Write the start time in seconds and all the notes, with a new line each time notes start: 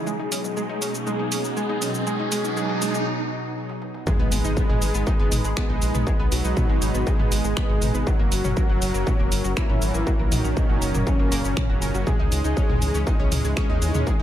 Already playing: riser
0.07 B2 F#3 G#3 D#4 G#4, shaker
0.19 D#4
0.32 C#4, open hi-hat, shaker
0.44 mid tom, shaker
0.57 G#3 G#4, shaker
0.69 D#4
0.82 C#4, open hi-hat, shaker
0.94 shaker
1.07 G#3 G#4, mid tom, shaker
1.19 D#4
1.32 C#4, open hi-hat, shaker
1.44 shaker
1.57 G#3 G#4, shaker
1.69 D#4, mid tom
1.82 B2 F#3 C#4 D#4, open hi-hat, shaker
1.94 shaker
2.07 G#3 G#4, shaker
2.19 D#4
2.32 G#3 G#4, mid tom, open hi-hat, shaker
2.44 B2 F#3 D#4, shaker
2.57 G#3 G#4, shaker
2.69 D#4
2.82 G#3 G#4, open hi-hat, shaker
2.94 D#4, mid tom, shaker
3.69 high tom
3.82 mid tom
3.94 mid tom
4.07 G#3 D#4 G#4 B4, kick, mid tom, impact, shaker
4.19 G#1 B3 B4
4.32 G#1, open hi-hat, shaker
4.44 G#1 D#4 D#5, shaker
4.57 B3 B4, kick, shaker
4.69 G#1 G#3 G#4, mid tom
4.82 G#1, open hi-hat, shaker
4.94 G#1 B3 B4, shaker
5.07 D#4 D#5, kick, shaker
5.19 F#1 B3 B4
5.32 G#1, mid tom, open hi-hat, shaker
5.44 G#1 G#3 G#4, shaker
5.57 G#3 B3 G#4 B4, finger snap, kick, shaker
5.69 A#1 D#4 D#5
5.82 A#1 B2 G#3 D#4, open hi-hat, shaker
5.94 A#1 B3 B4, mid tom, shaker
6.07 G#3 G#4, kick, shaker
6.19 B1 B3 B4
6.32 B1 F#3 F#4, open hi-hat, shaker
6.44 B1 B2 G#3 D#4 D#5, shaker
6.57 B3 B4, kick, mid tom, shaker
6.69 G#1 G#3 G#4
6.82 G#1, open hi-hat, shaker
6.94 G#1 B3 B4, shaker
7.07 G#3 D#4 G#4 D#5, kick, shaker
7.19 G#1 B3 B4, mid tom
7.32 G#1, open hi-hat, shaker
7.44 G#1 G#3 G#4, shaker
7.57 B3 B4, finger snap, kick, shaker
7.69 G#1 D#4 D#5
7.82 G#1, mid tom, open hi-hat, shaker
7.94 G#1 B3 B4, shaker
8.07 F#3 C#4 F#4 A#4, kick, shaker
8.19 F#1 A#3 A#4
8.32 F#1, open hi-hat, shaker
8.44 F#1 C#4 C#5, mid tom, shaker
8.57 A#3 A#4, kick, shaker
8.69 F#1 F#3 F#4
8.82 F#1, open hi-hat, shaker
8.94 F#1 A#3 A#4, shaker
9.07 C#4 C#5, kick, mid tom, shaker
9.19 E1 A#3 A#4
9.32 F#1, open hi-hat, shaker
9.44 F#1 F#3 F#4, shaker
9.57 E3 A#3 E4 A#4, finger snap, kick, shaker
9.69 G#1 C#4 C#5, mid tom
9.82 G#1 A#2 F#3 C#4, open hi-hat, shaker
9.94 G#1 A#3 A#4, shaker
10.07 F#3 F#4, kick, shaker
10.19 A#1 A#3 A#4
10.32 A#1 D#3 D#4, mid tom, open hi-hat, shaker
10.44 A#1 A#2 F#3 C#4 C#5, shaker
10.57 A#3 A#4, kick, shaker
10.69 F#1 F#3 F#4
10.82 F#1, open hi-hat, shaker
10.94 F#1 A#3 A#4, mid tom, shaker
11.07 C#3 C#4 C#5, kick, shaker
11.19 F#1 A#3 A#4
11.32 F#1 A#3 A#4, open hi-hat, shaker
11.45 F#1 C#4 C#5, shaker
11.57 A#3 A#4, finger snap, kick, mid tom, shaker
11.69 F#1 A#2 F#3 C#4 F#4 F#5
11.82 F#1 A#4 A#5, open hi-hat, shaker
11.94 F#1 F#3 F#4, shaker
12.07 E3 G#3 C#4 D#4 G#4, kick, mid tom, shaker
12.19 C#2 D#4 D#5
12.32 C#2, open hi-hat, shaker
12.44 C#2 D#4 D#5, shaker
12.57 C#4 C#5, kick, shaker
12.69 C#2 G#3 G#4, mid tom
12.82 C#2, open hi-hat, shaker
12.94 C#2 C#4 C#5, shaker
13.07 D#4 D#5, kick, shaker
13.19 B1 C#4 C#5
13.32 C#2, mid tom, open hi-hat, shaker
13.44 C#2 G#3 G#4, shaker
13.57 G#3 C#4 G#4 C#5, finger snap, kick, shaker
13.69 D#2 D#4 D#5
13.82 D#2 C#3 E3 D#4, open hi-hat, shaker
13.95 D#2 C#4 C#5, mid tom, shaker
14.07 G#3 G#4, kick, shaker
14.19 E2 D#4 D#5